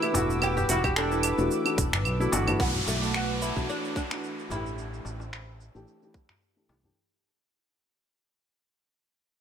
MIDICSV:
0, 0, Header, 1, 9, 480
1, 0, Start_track
1, 0, Tempo, 545455
1, 365, Time_signature, 4, 2, 24, 8
1, 8280, End_track
2, 0, Start_track
2, 0, Title_t, "Analog synth pad"
2, 0, Program_c, 0, 89
2, 0, Note_on_c, 0, 71, 79
2, 0, Note_on_c, 0, 86, 75
2, 0, Note_on_c, 0, 88, 81
2, 2249, Note_off_c, 0, 71, 0
2, 2251, Note_off_c, 0, 86, 0
2, 2253, Note_off_c, 0, 88, 0
2, 2293, Note_on_c, 0, 86, 85
2, 2294, Note_on_c, 0, 71, 71
2, 2295, Note_on_c, 0, 78, 65
2, 2295, Note_on_c, 0, 81, 67
2, 4190, Note_off_c, 0, 71, 0
2, 4190, Note_off_c, 0, 86, 0
2, 4191, Note_off_c, 0, 78, 0
2, 4191, Note_off_c, 0, 81, 0
2, 4204, Note_on_c, 0, 88, 80
2, 4206, Note_on_c, 0, 81, 67
2, 4207, Note_on_c, 0, 72, 77
2, 4208, Note_on_c, 0, 79, 68
2, 6106, Note_off_c, 0, 88, 0
2, 6107, Note_off_c, 0, 72, 0
2, 6107, Note_off_c, 0, 79, 0
2, 6107, Note_off_c, 0, 81, 0
2, 8280, End_track
3, 0, Start_track
3, 0, Title_t, "Kora"
3, 0, Program_c, 1, 46
3, 26, Note_on_c, 1, 64, 80
3, 134, Note_on_c, 1, 66, 76
3, 365, Note_off_c, 1, 64, 0
3, 369, Note_on_c, 1, 64, 89
3, 501, Note_on_c, 1, 67, 85
3, 554, Note_off_c, 1, 66, 0
3, 608, Note_on_c, 1, 66, 107
3, 661, Note_off_c, 1, 67, 0
3, 743, Note_on_c, 1, 67, 99
3, 796, Note_off_c, 1, 66, 0
3, 848, Note_on_c, 1, 69, 86
3, 978, Note_off_c, 1, 64, 0
3, 982, Note_on_c, 1, 64, 79
3, 1089, Note_on_c, 1, 76, 73
3, 1936, Note_off_c, 1, 64, 0
3, 1939, Note_on_c, 1, 64, 78
3, 1986, Note_off_c, 1, 67, 0
3, 1998, Note_off_c, 1, 76, 0
3, 2008, Note_off_c, 1, 69, 0
3, 2045, Note_on_c, 1, 66, 80
3, 3318, Note_off_c, 1, 64, 0
3, 3332, Note_off_c, 1, 66, 0
3, 8280, End_track
4, 0, Start_track
4, 0, Title_t, "Oud"
4, 0, Program_c, 2, 24
4, 0, Note_on_c, 2, 64, 99
4, 378, Note_off_c, 2, 64, 0
4, 381, Note_on_c, 2, 67, 106
4, 444, Note_off_c, 2, 67, 0
4, 625, Note_on_c, 2, 64, 84
4, 687, Note_off_c, 2, 64, 0
4, 864, Note_on_c, 2, 62, 78
4, 2019, Note_off_c, 2, 62, 0
4, 2290, Note_on_c, 2, 59, 93
4, 2355, Note_off_c, 2, 59, 0
4, 2532, Note_on_c, 2, 57, 84
4, 2769, Note_on_c, 2, 66, 103
4, 2776, Note_off_c, 2, 57, 0
4, 3005, Note_off_c, 2, 66, 0
4, 3009, Note_on_c, 2, 64, 93
4, 3248, Note_off_c, 2, 64, 0
4, 3252, Note_on_c, 2, 62, 96
4, 3472, Note_off_c, 2, 62, 0
4, 3492, Note_on_c, 2, 62, 95
4, 3969, Note_off_c, 2, 62, 0
4, 3973, Note_on_c, 2, 64, 85
4, 5614, Note_off_c, 2, 64, 0
4, 8280, End_track
5, 0, Start_track
5, 0, Title_t, "Felt piano"
5, 0, Program_c, 3, 0
5, 0, Note_on_c, 3, 52, 78
5, 0, Note_on_c, 3, 57, 73
5, 0, Note_on_c, 3, 62, 75
5, 0, Note_on_c, 3, 66, 86
5, 92, Note_off_c, 3, 52, 0
5, 101, Note_off_c, 3, 57, 0
5, 104, Note_off_c, 3, 62, 0
5, 106, Note_off_c, 3, 66, 0
5, 106, Note_on_c, 3, 52, 89
5, 119, Note_on_c, 3, 57, 83
5, 130, Note_on_c, 3, 62, 81
5, 140, Note_on_c, 3, 78, 91
5, 1176, Note_off_c, 3, 52, 0
5, 1183, Note_off_c, 3, 57, 0
5, 1189, Note_off_c, 3, 62, 0
5, 1193, Note_off_c, 3, 78, 0
5, 1210, Note_on_c, 3, 52, 97
5, 1215, Note_on_c, 3, 57, 90
5, 1222, Note_on_c, 3, 62, 90
5, 1227, Note_on_c, 3, 66, 108
5, 1422, Note_off_c, 3, 52, 0
5, 1425, Note_off_c, 3, 57, 0
5, 1428, Note_off_c, 3, 62, 0
5, 1431, Note_off_c, 3, 66, 0
5, 1447, Note_on_c, 3, 52, 93
5, 1453, Note_on_c, 3, 57, 80
5, 1457, Note_on_c, 3, 62, 80
5, 1461, Note_on_c, 3, 66, 100
5, 1534, Note_off_c, 3, 52, 0
5, 1537, Note_off_c, 3, 57, 0
5, 1539, Note_off_c, 3, 62, 0
5, 1541, Note_off_c, 3, 66, 0
5, 1930, Note_on_c, 3, 52, 79
5, 1937, Note_on_c, 3, 57, 74
5, 1941, Note_on_c, 3, 62, 71
5, 1949, Note_on_c, 3, 66, 89
5, 2016, Note_off_c, 3, 52, 0
5, 2019, Note_off_c, 3, 57, 0
5, 2021, Note_off_c, 3, 62, 0
5, 2025, Note_off_c, 3, 66, 0
5, 2043, Note_on_c, 3, 52, 90
5, 2050, Note_on_c, 3, 57, 73
5, 2054, Note_on_c, 3, 62, 79
5, 2060, Note_on_c, 3, 66, 90
5, 2145, Note_off_c, 3, 52, 0
5, 2149, Note_off_c, 3, 57, 0
5, 2150, Note_off_c, 3, 62, 0
5, 2153, Note_off_c, 3, 66, 0
5, 2178, Note_on_c, 3, 52, 94
5, 2182, Note_on_c, 3, 57, 91
5, 2188, Note_on_c, 3, 62, 93
5, 2195, Note_on_c, 3, 66, 108
5, 2526, Note_off_c, 3, 52, 0
5, 2527, Note_off_c, 3, 57, 0
5, 2531, Note_off_c, 3, 62, 0
5, 2534, Note_off_c, 3, 66, 0
5, 3133, Note_on_c, 3, 52, 92
5, 3138, Note_on_c, 3, 57, 83
5, 3145, Note_on_c, 3, 62, 92
5, 3151, Note_on_c, 3, 66, 107
5, 3584, Note_off_c, 3, 52, 0
5, 3586, Note_off_c, 3, 57, 0
5, 3590, Note_off_c, 3, 62, 0
5, 3593, Note_off_c, 3, 66, 0
5, 3616, Note_on_c, 3, 52, 72
5, 3623, Note_on_c, 3, 57, 65
5, 3627, Note_on_c, 3, 62, 61
5, 3633, Note_on_c, 3, 66, 78
5, 3939, Note_off_c, 3, 52, 0
5, 3942, Note_off_c, 3, 57, 0
5, 3944, Note_off_c, 3, 62, 0
5, 3947, Note_off_c, 3, 66, 0
5, 3954, Note_on_c, 3, 52, 82
5, 3967, Note_on_c, 3, 57, 72
5, 3978, Note_on_c, 3, 62, 68
5, 3990, Note_on_c, 3, 67, 85
5, 5021, Note_off_c, 3, 52, 0
5, 5027, Note_off_c, 3, 57, 0
5, 5032, Note_off_c, 3, 62, 0
5, 5039, Note_off_c, 3, 67, 0
5, 5055, Note_on_c, 3, 52, 81
5, 5058, Note_on_c, 3, 57, 84
5, 5065, Note_on_c, 3, 62, 78
5, 5071, Note_on_c, 3, 67, 101
5, 5265, Note_off_c, 3, 52, 0
5, 5266, Note_off_c, 3, 57, 0
5, 5270, Note_off_c, 3, 62, 0
5, 5273, Note_off_c, 3, 67, 0
5, 5296, Note_on_c, 3, 52, 80
5, 5302, Note_on_c, 3, 57, 71
5, 5309, Note_on_c, 3, 62, 72
5, 5316, Note_on_c, 3, 67, 85
5, 5379, Note_off_c, 3, 52, 0
5, 5382, Note_off_c, 3, 57, 0
5, 5385, Note_off_c, 3, 62, 0
5, 5388, Note_off_c, 3, 67, 0
5, 5769, Note_on_c, 3, 52, 64
5, 5777, Note_on_c, 3, 57, 58
5, 5781, Note_on_c, 3, 62, 60
5, 5787, Note_on_c, 3, 67, 69
5, 5855, Note_off_c, 3, 52, 0
5, 5859, Note_off_c, 3, 57, 0
5, 5861, Note_off_c, 3, 62, 0
5, 5864, Note_off_c, 3, 67, 0
5, 5882, Note_on_c, 3, 52, 70
5, 5888, Note_on_c, 3, 57, 67
5, 5893, Note_on_c, 3, 62, 65
5, 5900, Note_on_c, 3, 67, 78
5, 5984, Note_off_c, 3, 52, 0
5, 5988, Note_off_c, 3, 57, 0
5, 5990, Note_off_c, 3, 62, 0
5, 5993, Note_off_c, 3, 67, 0
5, 6015, Note_on_c, 3, 52, 79
5, 6023, Note_on_c, 3, 57, 76
5, 6028, Note_on_c, 3, 62, 74
5, 6031, Note_on_c, 3, 67, 94
5, 6111, Note_off_c, 3, 52, 0
5, 6115, Note_off_c, 3, 57, 0
5, 6118, Note_off_c, 3, 62, 0
5, 6119, Note_off_c, 3, 67, 0
5, 8280, End_track
6, 0, Start_track
6, 0, Title_t, "Fretless electric bass"
6, 0, Program_c, 4, 35
6, 131, Note_on_c, 4, 28, 89
6, 561, Note_off_c, 4, 28, 0
6, 610, Note_on_c, 4, 28, 79
6, 1162, Note_off_c, 4, 28, 0
6, 1217, Note_on_c, 4, 28, 89
6, 1296, Note_off_c, 4, 28, 0
6, 1567, Note_on_c, 4, 28, 99
6, 1805, Note_off_c, 4, 28, 0
6, 1805, Note_on_c, 4, 35, 92
6, 1987, Note_off_c, 4, 35, 0
6, 2048, Note_on_c, 4, 31, 105
6, 2228, Note_off_c, 4, 31, 0
6, 2286, Note_on_c, 4, 35, 90
6, 2467, Note_off_c, 4, 35, 0
6, 2525, Note_on_c, 4, 35, 74
6, 3080, Note_off_c, 4, 35, 0
6, 3137, Note_on_c, 4, 35, 78
6, 3216, Note_off_c, 4, 35, 0
6, 3963, Note_on_c, 4, 33, 81
6, 4397, Note_off_c, 4, 33, 0
6, 4445, Note_on_c, 4, 33, 78
6, 5000, Note_off_c, 4, 33, 0
6, 5060, Note_on_c, 4, 33, 76
6, 5137, Note_off_c, 4, 33, 0
6, 5889, Note_on_c, 4, 36, 87
6, 6069, Note_off_c, 4, 36, 0
6, 8280, End_track
7, 0, Start_track
7, 0, Title_t, "Downlifter"
7, 0, Program_c, 5, 103
7, 2286, Note_on_c, 5, 60, 64
7, 6126, Note_off_c, 5, 60, 0
7, 8280, End_track
8, 0, Start_track
8, 0, Title_t, "Darbuka"
8, 126, Note_on_c, 9, 63, 84
8, 128, Note_on_c, 9, 64, 85
8, 214, Note_off_c, 9, 63, 0
8, 216, Note_off_c, 9, 64, 0
8, 500, Note_on_c, 9, 62, 63
8, 506, Note_on_c, 9, 64, 80
8, 588, Note_off_c, 9, 62, 0
8, 594, Note_off_c, 9, 64, 0
8, 613, Note_on_c, 9, 63, 62
8, 701, Note_off_c, 9, 63, 0
8, 1092, Note_on_c, 9, 62, 68
8, 1180, Note_off_c, 9, 62, 0
8, 1567, Note_on_c, 9, 63, 35
8, 1655, Note_off_c, 9, 63, 0
8, 1702, Note_on_c, 9, 62, 40
8, 1703, Note_on_c, 9, 64, 73
8, 1790, Note_off_c, 9, 62, 0
8, 1791, Note_off_c, 9, 64, 0
8, 2045, Note_on_c, 9, 63, 86
8, 2133, Note_off_c, 9, 63, 0
8, 2174, Note_on_c, 9, 62, 64
8, 2183, Note_on_c, 9, 64, 76
8, 2262, Note_off_c, 9, 62, 0
8, 2271, Note_off_c, 9, 64, 0
8, 2416, Note_on_c, 9, 64, 71
8, 2504, Note_off_c, 9, 64, 0
8, 2523, Note_on_c, 9, 63, 56
8, 2611, Note_off_c, 9, 63, 0
8, 2659, Note_on_c, 9, 62, 53
8, 2747, Note_off_c, 9, 62, 0
8, 3487, Note_on_c, 9, 62, 57
8, 3575, Note_off_c, 9, 62, 0
8, 3611, Note_on_c, 9, 63, 57
8, 3699, Note_off_c, 9, 63, 0
8, 3964, Note_on_c, 9, 64, 89
8, 3970, Note_on_c, 9, 63, 77
8, 4052, Note_off_c, 9, 64, 0
8, 4058, Note_off_c, 9, 63, 0
8, 4444, Note_on_c, 9, 63, 56
8, 4532, Note_off_c, 9, 63, 0
8, 4576, Note_on_c, 9, 62, 53
8, 4664, Note_off_c, 9, 62, 0
8, 5413, Note_on_c, 9, 63, 31
8, 5501, Note_off_c, 9, 63, 0
8, 5542, Note_on_c, 9, 64, 70
8, 5630, Note_off_c, 9, 64, 0
8, 5890, Note_on_c, 9, 63, 80
8, 5978, Note_off_c, 9, 63, 0
8, 6021, Note_on_c, 9, 64, 78
8, 6109, Note_off_c, 9, 64, 0
8, 8280, End_track
9, 0, Start_track
9, 0, Title_t, "Drums"
9, 22, Note_on_c, 9, 75, 77
9, 26, Note_on_c, 9, 69, 27
9, 110, Note_off_c, 9, 75, 0
9, 114, Note_off_c, 9, 69, 0
9, 131, Note_on_c, 9, 46, 91
9, 135, Note_on_c, 9, 69, 75
9, 219, Note_off_c, 9, 46, 0
9, 223, Note_off_c, 9, 69, 0
9, 267, Note_on_c, 9, 69, 33
9, 355, Note_off_c, 9, 69, 0
9, 368, Note_on_c, 9, 75, 88
9, 372, Note_on_c, 9, 69, 44
9, 456, Note_off_c, 9, 75, 0
9, 460, Note_off_c, 9, 69, 0
9, 506, Note_on_c, 9, 69, 30
9, 594, Note_off_c, 9, 69, 0
9, 607, Note_on_c, 9, 46, 95
9, 612, Note_on_c, 9, 69, 76
9, 695, Note_off_c, 9, 46, 0
9, 700, Note_off_c, 9, 69, 0
9, 740, Note_on_c, 9, 36, 61
9, 740, Note_on_c, 9, 75, 88
9, 745, Note_on_c, 9, 69, 33
9, 828, Note_off_c, 9, 36, 0
9, 828, Note_off_c, 9, 75, 0
9, 833, Note_off_c, 9, 69, 0
9, 848, Note_on_c, 9, 26, 75
9, 853, Note_on_c, 9, 69, 46
9, 936, Note_off_c, 9, 26, 0
9, 941, Note_off_c, 9, 69, 0
9, 983, Note_on_c, 9, 69, 31
9, 1071, Note_off_c, 9, 69, 0
9, 1084, Note_on_c, 9, 46, 98
9, 1084, Note_on_c, 9, 75, 83
9, 1089, Note_on_c, 9, 69, 78
9, 1172, Note_off_c, 9, 46, 0
9, 1172, Note_off_c, 9, 75, 0
9, 1177, Note_off_c, 9, 69, 0
9, 1218, Note_on_c, 9, 69, 34
9, 1306, Note_off_c, 9, 69, 0
9, 1330, Note_on_c, 9, 69, 47
9, 1418, Note_off_c, 9, 69, 0
9, 1458, Note_on_c, 9, 75, 84
9, 1463, Note_on_c, 9, 69, 31
9, 1546, Note_off_c, 9, 75, 0
9, 1551, Note_off_c, 9, 69, 0
9, 1566, Note_on_c, 9, 36, 98
9, 1567, Note_on_c, 9, 46, 106
9, 1572, Note_on_c, 9, 69, 81
9, 1654, Note_off_c, 9, 36, 0
9, 1655, Note_off_c, 9, 46, 0
9, 1660, Note_off_c, 9, 69, 0
9, 1701, Note_on_c, 9, 26, 82
9, 1706, Note_on_c, 9, 69, 33
9, 1789, Note_off_c, 9, 26, 0
9, 1794, Note_off_c, 9, 69, 0
9, 1806, Note_on_c, 9, 75, 80
9, 1811, Note_on_c, 9, 69, 43
9, 1894, Note_off_c, 9, 75, 0
9, 1899, Note_off_c, 9, 69, 0
9, 1946, Note_on_c, 9, 69, 29
9, 2034, Note_off_c, 9, 69, 0
9, 2048, Note_on_c, 9, 46, 95
9, 2053, Note_on_c, 9, 69, 80
9, 2136, Note_off_c, 9, 46, 0
9, 2141, Note_off_c, 9, 69, 0
9, 2179, Note_on_c, 9, 75, 83
9, 2184, Note_on_c, 9, 69, 36
9, 2267, Note_off_c, 9, 75, 0
9, 2272, Note_off_c, 9, 69, 0
9, 2286, Note_on_c, 9, 36, 120
9, 2289, Note_on_c, 9, 69, 43
9, 2374, Note_off_c, 9, 36, 0
9, 2377, Note_off_c, 9, 69, 0
9, 2424, Note_on_c, 9, 69, 30
9, 2512, Note_off_c, 9, 69, 0
9, 2533, Note_on_c, 9, 69, 74
9, 2621, Note_off_c, 9, 69, 0
9, 2666, Note_on_c, 9, 69, 33
9, 2754, Note_off_c, 9, 69, 0
9, 2767, Note_on_c, 9, 26, 78
9, 2772, Note_on_c, 9, 69, 40
9, 2855, Note_off_c, 9, 26, 0
9, 2860, Note_off_c, 9, 69, 0
9, 3008, Note_on_c, 9, 69, 73
9, 3096, Note_off_c, 9, 69, 0
9, 3138, Note_on_c, 9, 36, 53
9, 3144, Note_on_c, 9, 69, 31
9, 3226, Note_off_c, 9, 36, 0
9, 3232, Note_off_c, 9, 69, 0
9, 3252, Note_on_c, 9, 69, 43
9, 3340, Note_off_c, 9, 69, 0
9, 3384, Note_on_c, 9, 69, 29
9, 3472, Note_off_c, 9, 69, 0
9, 3485, Note_on_c, 9, 36, 96
9, 3491, Note_on_c, 9, 69, 72
9, 3573, Note_off_c, 9, 36, 0
9, 3579, Note_off_c, 9, 69, 0
9, 3618, Note_on_c, 9, 26, 72
9, 3623, Note_on_c, 9, 69, 31
9, 3706, Note_off_c, 9, 26, 0
9, 3711, Note_off_c, 9, 69, 0
9, 3729, Note_on_c, 9, 69, 42
9, 3817, Note_off_c, 9, 69, 0
9, 3865, Note_on_c, 9, 69, 25
9, 3953, Note_off_c, 9, 69, 0
9, 3969, Note_on_c, 9, 69, 72
9, 4057, Note_off_c, 9, 69, 0
9, 4103, Note_on_c, 9, 69, 32
9, 4191, Note_off_c, 9, 69, 0
9, 4209, Note_on_c, 9, 69, 42
9, 4297, Note_off_c, 9, 69, 0
9, 4345, Note_on_c, 9, 69, 29
9, 4433, Note_off_c, 9, 69, 0
9, 4452, Note_on_c, 9, 69, 72
9, 4540, Note_off_c, 9, 69, 0
9, 4586, Note_on_c, 9, 69, 31
9, 4674, Note_off_c, 9, 69, 0
9, 4690, Note_on_c, 9, 26, 75
9, 4695, Note_on_c, 9, 69, 41
9, 4778, Note_off_c, 9, 26, 0
9, 4783, Note_off_c, 9, 69, 0
9, 4933, Note_on_c, 9, 69, 72
9, 5021, Note_off_c, 9, 69, 0
9, 5065, Note_on_c, 9, 69, 32
9, 5153, Note_off_c, 9, 69, 0
9, 5170, Note_on_c, 9, 69, 42
9, 5258, Note_off_c, 9, 69, 0
9, 5302, Note_on_c, 9, 69, 28
9, 5390, Note_off_c, 9, 69, 0
9, 5406, Note_on_c, 9, 36, 98
9, 5406, Note_on_c, 9, 69, 75
9, 5494, Note_off_c, 9, 36, 0
9, 5494, Note_off_c, 9, 69, 0
9, 5536, Note_on_c, 9, 26, 70
9, 5624, Note_off_c, 9, 26, 0
9, 5647, Note_on_c, 9, 69, 42
9, 5735, Note_off_c, 9, 69, 0
9, 5783, Note_on_c, 9, 69, 25
9, 5871, Note_off_c, 9, 69, 0
9, 5888, Note_on_c, 9, 69, 71
9, 5976, Note_off_c, 9, 69, 0
9, 8280, End_track
0, 0, End_of_file